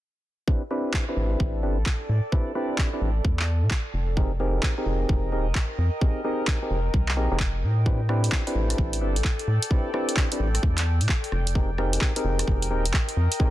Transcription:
0.47 C4 D4 E4 G4 A4 B4, kick
0.71 C4 D4 E4 G4 B4
0.88 D5
0.94 G5, kick, clap
1.09 C4 D4 E4 G4 B4
1.17 A1
1.40 A1, kick
1.63 G1 C4 D4 E4 G4 B4
1.78 A1
1.86 kick, clap
2.09 A2
2.32 C4 D4 E4 G4 B4, kick
2.55 C4 D4 E4 G4 B4
2.78 kick, clap
2.93 C4 D4 E4 G4 B4
3.01 A1
3.25 E2, kick
3.39 clap
3.63 A2
3.71 kick, clap
3.94 F1
4.17 C4 D#4 G4 G#4 A#4, kick
4.25 D#5
4.40 C4 D#4 G4 G#4 A#4
4.63 kick, clap
4.78 C4 D#4 G4 G#4 A#4
4.86 F1
5.09 F1, kick
5.32 D#1 C4 D#4 G4 G#4 A#4
5.47 F1
5.55 kick, clap
5.78 F2
6.01 C4 D#4 G4 G#4 A#4, kick
6.24 C4 D#4 G4 G#4 A#4
6.47 kick, clap
6.62 C4 D#4 G4 G#4 A#4
6.71 F1
6.94 C2, kick
7.09 clap
7.17 A#1 C4 D#4 G4 G#4 A#4
7.32 F1 C4 D#4 G4 G#4 A#4
7.40 kick, clap
7.63 A2
7.86 C4 D4 E4 G4 A4 B4, kick
8.09 C4 D4 E4 G4 B4, cross-stick
8.18 D5
8.24 closed hi-hat
8.32 kick, clap
8.47 C4 D4 E4 G4 B4, closed hi-hat
8.55 A1
8.70 cross-stick, closed hi-hat
8.78 A1, kick
8.93 closed hi-hat
9.01 G1 C4 D4 E4 G4 B4
9.16 A1, closed hi-hat
9.24 kick, clap
9.39 closed hi-hat
9.48 A2
9.62 closed hi-hat
9.71 C4 D4 E4 G4 B4, kick
9.94 C4 D4 E4 G4 B4, cross-stick
10.09 closed hi-hat
10.17 kick, clap
10.32 C4 D4 E4 G4 B4, closed hi-hat
10.40 A1
10.55 cross-stick, closed hi-hat
10.63 E2, kick
10.78 clap, closed hi-hat
11.01 A2, closed hi-hat
11.09 kick, clap
11.24 closed hi-hat
11.32 F1, cross-stick
11.47 closed hi-hat
11.55 C4 D#4 G4 G#4 A#4, kick
11.78 C4 D#4 G4 G#4 A#4, cross-stick
11.87 D#5
11.93 closed hi-hat
12.01 kick, clap
12.16 C4 D#4 G4 G#4 A#4, closed hi-hat
12.24 F1
12.39 cross-stick, closed hi-hat
12.48 F1, kick
12.62 closed hi-hat
12.71 D#1 C4 D#4 G4 G#4 A#4
12.86 F1, closed hi-hat
12.94 kick, clap
13.09 closed hi-hat
13.17 F2
13.32 closed hi-hat
13.40 C4 D#4 G4 G#4 A#4, kick

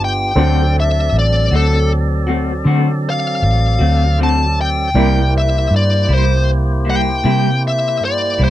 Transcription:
Already playing: G1 B3 D4 F4 G4 A4 B4
0.04 G5
0.35 D2 D3 F#3 A3 C4 D4 F#4 A4 C5 D5
0.80 E5
1.12 A1
1.19 D5
1.51 D2 A3 C4 F#4
1.56 A4
2.27 A3 C4 F#4
2.64 D3 A3 C4 F#4
3.10 F5
3.42 A1
3.79 D2 A3 C4 F#4
4.18 D3 A3 C4 F#4
4.23 A5
4.61 G5
4.94 C2 C3 G3 A#3 E4 G4 A#4 C5 D5
5.38 E5
5.71 G2
5.76 D5
6.09 C2 G3 A#3 E4
6.14 C5
6.85 G3 A#3 E4
6.90 G5
7.24 C3 G3 A#3 E4
7.68 E5
8.00 G2
8.05 D5
8.38 C2 G3 A#3 E4
8.44 C5

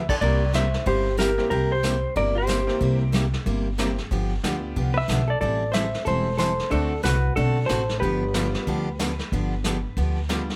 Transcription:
0.09 A4 D5, kick, crash
0.21 C2 C3 G3 A#3 E4 G4 A#4 D5, brush sweep, kick
0.53 C3 G3 A#3 E4 G4 C5 E5, snare, hi-hat pedal
0.74 snare
0.86 G1 C3 G3 A#3 E4 G4 C5, brush sweep, kick
1.17 C3 G3 A#3 E4 G4 A#4, snare, hi-hat pedal
1.38 A#3 C4 E4 G4, snare
1.50 C2 C3 G3 A#3 E4 G4 A#4, brush sweep, kick
1.71 G4 C5
1.83 C3 G3 A#3 E4 G4, snare, hi-hat pedal
2.16 G1 C3 G3 A#3 E4 G4 A#4 D5, brush sweep, kick
2.35 G4 C5
2.47 C3 G3 A#3 E4 G4, snare, hi-hat pedal
2.67 A#3 C4 E4 G4, snare
2.80 C2 C3 G3 A#3 E4 G4, brush sweep, kick
3.12 C3 G3 A#3 E4 G4, snare, hi-hat pedal
3.34 snare
3.46 G1 C3 G3 A#3 E4 G4, brush sweep, kick
3.78 C3 G3 A#3 C4 E4 G4, snare, hi-hat pedal
3.98 snare
4.11 G1 D3 F3 B3 D4 G4, brush sweep, kick
4.43 D2 D3 F3 B3 D4 F4 G4, snare, hi-hat pedal
4.76 C2 D3 F3 B3 D4 G4, brush sweep, kick
4.94 B4 E5
5.08 B1 D3 F3 B3 D4 G4, snare, hi-hat pedal
5.28 A4 D5
5.41 A1 E3 G3 C4 E4 A4 D5, brush sweep, kick
5.72 E3 G3 C4 E4 A4 C5 E5, snare, hi-hat pedal
5.94 snare
6.05 E1 E3 G3 C4 E4 A4 C5, brush sweep, kick
6.37 E3 G3 C4 E4 A4 C5, snare, hi-hat pedal
6.59 snare
6.70 D2 D3 A3 C4 D4 F#4 A4, brush sweep, kick
7.03 C2 D3 A3 C4 F#4 A4 B4, snare, hi-hat pedal
7.36 B1 D3 A3 C4 D4 F#4 A4, brush sweep, kick
7.66 A1 D3 A3 A4 C5, snare, hi-hat pedal
7.70 C4 F#4 A4
7.89 snare
8.00 G1 D3 F3 B3 D4 G4 B4, brush sweep, kick
8.34 D3 F3 G3 B3 D4 F4 G4, snare, hi-hat pedal
8.54 snare
8.67 D2 D3 F3 B3 D4 G4, brush sweep, kick
8.99 D3 F3 B3 D4 G4, snare, hi-hat pedal
9.19 snare
9.32 G1 D3 F3 B3 D4 G4, brush sweep, kick
9.64 D3 F3 B3 D4 G4, snare, hi-hat pedal
9.97 D2 D3 F3 B3 D4 G4, brush sweep, kick
10.29 D3 F3 G3 B3 D4 F4 G4, snare, hi-hat pedal
10.50 snare

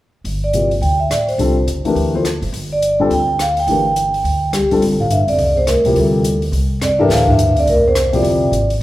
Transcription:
0.24 G1, open hi-hat
0.44 D5
0.53 C3 F3 A#3 E4 G4, closed hi-hat
0.71 open hi-hat
0.81 D2 G5, open hi-hat
1.00 E5
1.10 A1 D5, cross-stick, closed hi-hat
1.28 C5, open hi-hat
1.38 C2 D3 G3 C4 F4 A4, open hi-hat
1.67 F#1, closed hi-hat
1.85 E3 A3 D4 G4 A#4, open hi-hat
1.95 D2, open hi-hat
2.14 F3 A#3 E4 A4 C5
2.25 cross-stick, closed hi-hat
2.42 F#1, open hi-hat
2.52 G1, open hi-hat
2.73 D5
2.82 closed hi-hat
3.00 D3 G3 C4 F4 A4
3.10 D2 G5, open hi-hat
3.39 F5, cross-stick, closed hi-hat
3.57 G5, open hi-hat
3.67 G1 E3 A3 D4 G4 A#4, open hi-hat
3.96 closed hi-hat
4.14 open hi-hat
4.24 D2, open hi-hat
4.52 C2 G4, cross-stick, closed hi-hat
4.62 C2
4.69 G#1 C2 D3 G3 C4 F4 A4, open hi-hat
4.82 G1, open hi-hat
4.99 A2 F5
5.08 G2 E5, closed hi-hat
5.26 F#1 F2 D5, open hi-hat
5.38 C2, open hi-hat
5.55 E2 C5
5.66 D2 A#4, cross-stick, closed hi-hat
5.85 C3 F3 A#3 E4 G4, muted upright bass stroke, open hi-hat
5.95 C2 D2 A4, open hi-hat
6.24 closed hi-hat
6.42 open hi-hat
6.52 C2, open hi-hat
6.82 F2 D5, cross-stick, closed hi-hat
6.99 G2 E3 D4 G4 A4 A#4 E5
7.09 D2 A2 F5, snare, open hi-hat
7.27 G2 E5, kick
7.39 closed hi-hat
7.56 F2 D5, open hi-hat
7.66 C2 D2 A#4, open hi-hat
7.86 E2 C5
7.95 cross-stick, closed hi-hat
8.13 F2 C3 F3 A#3 E4 G4 D5, open hi-hat
8.23 G1, open hi-hat
8.51 G#1, closed hi-hat
8.70 open hi-hat

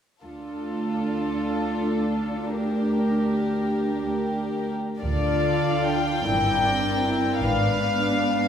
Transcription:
0.24 D2 D4 F4 A4
2.56 G4 A#4
4.99 D2 D3 D4 F4 A4 D5 F5
5.85 G5
6.26 G1 G2 C4 E4 A#4 D5
6.65 D4
7.04 E4
7.39 G#1 G#2 B3 D4 B4 D5 F5

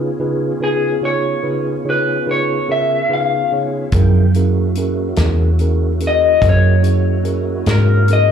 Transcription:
Already playing: B3 C#4 F4 G#4
0.19 C#3 D#4 F4 G#4 B4
0.60 C#3 D#4 F4 G#4 B4
1.01 C#3 D#4 F4 G#4 C#5
1.05 C#5
1.43 C#3 D#4 F4 G#4 B4
1.84 C#3 D#4 F4 G#4 C#5
1.90 B4
2.26 C#3 D#4 F4 G#4 B4
2.31 C#5
2.68 C#3 C#4 F4 G#4 A#4 E5
3.09 C#3 D#4 F4 G#4 B4
3.13 F5
3.52 C#3 D#4 F4 G#4 C#5
3.92 F#2 D3 F3 B3 C#4 E4 G#4 A#4 G5, kick, closed hi-hat
4.34 A#3 C#4 E4 F#4 G#4 A#4, closed hi-hat
4.75 C#4 E4 G#4 A#4, closed hi-hat
5.16 E2 C#4 E4 G#4 A#4, snare, closed hi-hat
5.59 C#4 E4 G#4 A#4, closed hi-hat
6.00 C#4 E4 G#4 A#4, closed hi-hat
6.07 D#5
6.42 F#2 C#4 E4 G#4 A#4, kick, snare, closed hi-hat
6.49 C#5
6.82 C#4 E4 G#4 C#5, closed hi-hat
7.24 C#4 E4 G#4 A#4, closed hi-hat
7.66 G#2 C#4 E4 G#4 A#4, snare, closed hi-hat
7.71 A#4
8.08 C#4 E4 G#4 A#4, closed hi-hat
8.13 D#5

